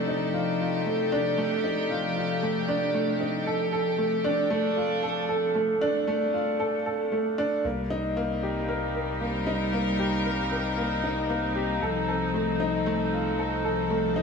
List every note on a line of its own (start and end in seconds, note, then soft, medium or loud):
0.00 5.55 C3 medium
0.00 5.55 F3 medium
0.00 0.86 A3 loud
0.00 1.12 D4 medium
0.00 3.47 D#4 medium
0.00 4.51 G4 medium
0.00 5.55 A4 medium
0.08 0.33 D#4 medium
0.34 0.49 F4 medium
0.60 0.75 F4 medium
0.86 1.11 A3 medium
1.12 1.37 D4 loud
1.38 1.63 A3 loud
1.64 1.89 D#4 medium
1.90 2.05 F4 medium
2.16 2.31 F4 medium
2.42 2.67 A3 medium
2.68 2.93 D4 loud
2.94 3.19 A3 medium
3.20 3.45 D#4 medium
3.47 3.62 A4 medium
3.73 3.88 A4 medium
3.98 4.23 A3 medium
4.24 4.50 D4 loud
4.50 4.76 A3 loud
4.50 5.56 D4 medium
4.77 5.02 F4 medium
5.03 5.18 A4 medium
5.29 5.44 A4 medium
5.55 5.80 A3 medium
5.81 6.06 D4 loud
6.07 6.32 A3 loud
6.34 6.59 F4 medium
6.60 6.75 A4 medium
6.86 7.01 A4 medium
7.12 7.37 A3 medium
7.38 7.63 D4 loud
7.64 11.79 C2 medium
7.64 11.82 G3 medium
7.64 7.89 A#3 medium
7.90 14.22 C4 medium
7.90 8.15 D#4 loud
8.17 8.41 A#3 loud
8.38 14.22 D#4 medium
8.43 8.67 G4 medium
8.69 8.83 A#4 medium
8.95 9.10 A#4 medium
9.20 9.46 A#3 medium
9.20 11.82 A#4 medium
9.47 9.72 D#4 loud
9.73 9.98 A#3 loud
9.99 10.24 G4 medium
10.25 10.40 A#4 medium
10.52 10.66 A#4 medium
10.77 11.02 A#3 medium
11.04 11.28 D#4 loud
11.30 11.54 A#3 loud
11.55 11.80 G4 medium
11.81 14.22 C2 medium
11.81 14.22 F3 medium
11.81 11.97 A4 medium
12.08 12.23 A4 medium
12.34 12.59 A3 medium
12.60 12.85 D#4 loud
12.60 14.22 A4 medium
12.86 13.11 A3 loud
13.13 13.37 F4 medium
13.39 13.53 A4 medium
13.64 13.79 A4 medium
13.90 14.15 A3 medium
14.16 14.22 D#4 loud